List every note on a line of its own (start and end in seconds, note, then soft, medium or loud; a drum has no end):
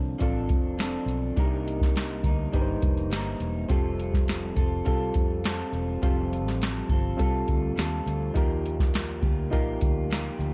0.00 0.14 C2 medium
0.00 0.23 D3 medium
0.00 0.17 F3 medium
0.00 0.19 C4 medium
0.00 0.20 C4 medium
0.00 0.20 D4 medium
0.00 0.22 F4 medium
0.00 0.20 A4 medium
0.00 0.22 A4 medium
0.18 0.49 A1 medium
0.18 0.76 F3 medium
0.18 1.27 C4 medium
0.18 0.79 C4 medium
0.18 1.27 D4 medium
0.18 0.79 D4 medium
0.18 1.28 F4 medium
0.18 0.80 A4 medium
0.18 kick medium
0.18 closed hi-hat medium
0.22 1.28 A4 medium
0.49 0.96 F1 medium
0.49 kick medium
0.49 closed hi-hat medium
0.78 1.37 F3 soft
0.78 1.37 C4 medium
0.78 1.38 D4 medium
0.78 1.38 A4 medium
0.78 snare loud
0.78 closed hi-hat medium
1.06 1.30 B1 medium
1.06 closed hi-hat medium
1.36 2.20 C2 medium
1.36 2.24 C3 medium
1.36 2.52 G3 medium
1.36 2.25 A#3 medium
1.36 2.44 D4 medium
1.36 2.44 D#4 medium
1.36 2.25 D#4 medium
1.36 2.44 G4 medium
1.36 2.22 A#4 medium
1.36 2.45 A#4 medium
1.36 kick loud
1.36 closed hi-hat medium
1.68 closed hi-hat medium
1.81 kick medium
1.81 snare soft
1.96 snare medium
1.96 closed hi-hat medium
2.23 2.47 D2 medium
2.23 2.54 D#4 soft
2.23 2.53 A#4 soft
2.23 kick medium
2.23 closed hi-hat medium
2.28 2.53 A#3 soft
2.52 2.77 G1 medium
2.52 3.10 G3 medium
2.52 3.11 A#3 medium
2.52 3.60 D4 medium
2.52 3.60 D#4 medium
2.52 3.12 D#4 medium
2.52 3.61 G4 medium
2.52 3.13 A#4 medium
2.52 2.61 B4 medium
2.52 kick medium
2.52 closed hi-hat medium
2.62 3.64 C5 medium
2.82 3.10 F1 medium
2.82 kick medium
2.82 closed hi-hat medium
2.97 closed hi-hat medium
3.10 3.34 G1 medium
3.10 3.69 G3 medium
3.10 3.70 A#3 medium
3.10 3.71 D#4 medium
3.10 snare loud
3.10 closed hi-hat medium
3.15 3.71 A#4 medium
3.25 closed hi-hat medium
3.40 3.64 E1 medium
3.40 closed hi-hat medium
3.68 4.53 F1 medium
3.68 4.88 F3 medium
3.68 4.59 G3 medium
3.68 4.76 C4 medium
3.68 4.58 C4 medium
3.68 4.77 F4 medium
3.68 4.58 F4 medium
3.68 4.77 G4 medium
3.68 4.55 A4 medium
3.68 4.77 A4 medium
3.68 kick loud
3.68 closed hi-hat medium
4.00 closed hi-hat medium
4.14 kick medium
4.14 snare soft
4.28 snare medium
4.28 closed hi-hat medium
4.56 4.80 F1 medium
4.56 4.86 F4 soft
4.56 4.86 A4 soft
4.56 kick medium
4.56 closed hi-hat medium
4.60 4.85 C4 soft
4.85 5.10 C2 medium
4.85 5.44 G3 medium
4.85 5.92 C4 medium
4.85 5.44 C4 medium
4.85 5.93 F4 medium
4.85 5.46 F4 medium
4.85 5.93 G4 medium
4.85 5.94 A4 medium
4.85 kick medium
4.85 closed hi-hat medium
4.89 5.46 A4 medium
5.14 5.62 F2 medium
5.14 kick medium
5.14 closed hi-hat medium
5.44 6.02 G3 medium
5.44 6.02 C4 medium
5.44 6.03 F4 medium
5.44 6.03 A4 medium
5.44 snare loud
5.44 closed hi-hat medium
5.73 5.97 E1 medium
5.73 closed hi-hat medium
6.02 6.45 F1 medium
6.02 7.21 F3 medium
6.02 6.92 G3 medium
6.02 7.09 C4 medium
6.02 6.90 C4 medium
6.02 7.10 F4 medium
6.02 6.91 F4 medium
6.02 7.10 G4 medium
6.02 6.88 A4 medium
6.02 7.10 C5 medium
6.02 kick loud
6.02 closed hi-hat medium
6.33 closed hi-hat medium
6.45 6.80 A1 medium
6.45 snare soft
6.62 snare loud
6.62 closed hi-hat medium
6.89 7.13 G1 medium
6.89 7.19 F4 soft
6.89 7.19 A4 soft
6.89 kick medium
6.89 closed hi-hat medium
6.93 7.18 C4 soft
7.17 7.43 C2 medium
7.17 7.75 G3 medium
7.17 8.25 C4 medium
7.17 7.76 C4 medium
7.17 8.25 F4 medium
7.17 7.78 F4 medium
7.17 8.26 G4 medium
7.17 8.26 A4 medium
7.17 kick medium
7.17 closed hi-hat medium
7.21 7.79 A4 medium
7.48 7.72 D2 medium
7.48 kick medium
7.48 closed hi-hat medium
7.76 8.01 D#2 medium
7.76 8.35 G3 medium
7.76 8.36 C4 medium
7.76 8.36 F4 medium
7.76 snare medium
7.76 closed hi-hat medium
7.80 8.37 A4 medium
8.06 8.30 D2 medium
8.06 closed hi-hat medium
8.34 9.19 D#2 medium
8.34 9.27 D#3 medium
8.34 9.23 F3 medium
8.34 9.25 A#3 medium
8.34 9.42 D#4 medium
8.34 9.42 F4 medium
8.34 9.23 F4 medium
8.34 9.43 G4 medium
8.34 9.21 G4 medium
8.34 9.43 A#4 medium
8.34 kick loud
8.34 closed hi-hat medium
8.66 closed hi-hat medium
8.80 kick medium
8.80 snare soft
8.94 snare medium
8.94 closed hi-hat medium
9.21 9.52 D2 medium
9.21 9.51 A#3 soft
9.21 9.52 F4 soft
9.21 9.52 G4 soft
9.21 kick medium
9.21 closed hi-hat medium
9.50 9.76 A#1 medium
9.50 10.09 F3 medium
9.50 10.11 A#3 medium
9.50 10.54 D#4 medium
9.50 10.54 F4 medium
9.50 10.11 F4 medium
9.50 10.54 G4 medium
9.50 10.13 G4 medium
9.50 10.54 A#4 medium
9.50 kick medium
9.50 closed hi-hat medium
9.81 10.28 D2 medium
9.81 kick medium
9.81 closed hi-hat medium
10.10 10.54 F3 medium
10.10 10.54 A#3 medium
10.10 10.54 F4 medium
10.10 10.54 G4 medium
10.10 snare loud
10.10 closed hi-hat medium
10.39 10.54 D2 medium
10.39 closed hi-hat medium